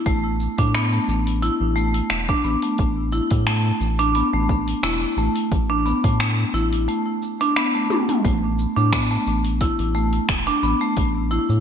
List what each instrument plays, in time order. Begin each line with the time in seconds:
0.06 analog synth bass A1, marimba A3, kick, open hi-hat, shaker
0.40 shaker
0.58 analog synth bass A2, marimba D4, kick, open hi-hat, shaker
0.75 marimba B3, finger snap, open hi-hat, shaker
0.93 marimba A3
1.08 analog synth bass A1, shaker
1.27 open hi-hat, shaker
1.42 marimba E4, open hi-hat, shaker
1.60 analog synth bass A1
1.76 marimba A3, shaker
1.94 open hi-hat, shaker
2.10 analog synth bass E1, finger snap, open hi-hat, shaker
2.29 marimba D4, kick
2.44 analog synth bass A1, marimba B3, shaker
2.62 marimba A3, open hi-hat, shaker
2.78 analog synth bass A1, kick, open hi-hat, shaker
3.12 marimba E4, shaker
3.31 analog synth bass A2, kick, open hi-hat, shaker
3.47 marimba A3, finger snap, open hi-hat, shaker
3.81 analog synth bass A1, shaker
3.99 marimba D4, open hi-hat, shaker
4.15 marimba B3, open hi-hat, shaker
4.33 analog synth bass A1, marimba A3
4.49 kick, shaker
4.68 open hi-hat, shaker
4.83 analog synth bass E1, marimba E4, finger snap, open hi-hat, shaker
5.17 analog synth bass A1, marimba A3, shaker
5.36 open hi-hat, shaker
5.52 analog synth bass A1, kick, open hi-hat, shaker
5.70 marimba D4
5.86 marimba B3, shaker
6.04 analog synth bass A2, marimba A3, kick, open hi-hat, shaker
6.20 finger snap, open hi-hat, shaker
6.54 analog synth bass A1, marimba E4, shaker
6.73 open hi-hat, shaker
6.88 marimba A3, open hi-hat, shaker
7.22 shaker
7.41 marimba D4, open hi-hat, shaker
7.56 marimba B3, finger snap, open hi-hat, shaker
7.74 marimba A3
7.90 high tom, shaker
8.09 open hi-hat, mid tom, shaker
8.24 analog synth bass A1, marimba A3, kick, open hi-hat, shaker
8.59 shaker
8.77 analog synth bass A2, marimba D4, shaker
8.92 marimba B3, finger snap, kick, open hi-hat, shaker
9.11 marimba A3
9.27 analog synth bass A1, shaker
9.45 open hi-hat, shaker
9.61 marimba E4, kick, open hi-hat, shaker
9.79 analog synth bass A1, open hi-hat
9.95 marimba A3, shaker
10.13 open hi-hat, shaker
10.29 analog synth bass E1, finger snap, kick, open hi-hat, shaker
10.47 marimba D4, open hi-hat
10.63 analog synth bass A1, marimba B3, shaker
10.81 marimba A3, shaker
10.97 analog synth bass A1, kick, open hi-hat, shaker
11.31 marimba E4, shaker
11.49 analog synth bass A2, shaker